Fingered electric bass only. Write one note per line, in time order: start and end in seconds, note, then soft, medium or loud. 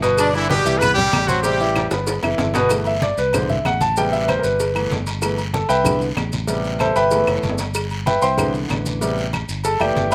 0.00 0.60 G1 loud
0.65 1.10 C2 loud
1.13 1.86 A1 medium
1.91 2.21 G1 medium
2.23 2.38 F#1 medium
2.39 3.12 G1 medium
3.17 3.62 C2 medium
3.65 4.38 A1 medium
4.44 4.88 G1 medium
4.90 5.64 G1 medium
5.69 6.14 C2 medium
6.17 6.90 A1 medium
6.96 7.25 G1 medium
7.27 7.42 F#1 medium
7.43 8.17 G1 medium
8.22 8.66 C2 medium
8.70 9.43 A1 medium
9.49 9.78 G1 medium
9.80 9.95 F#1 medium
9.96 10.15 G1 loud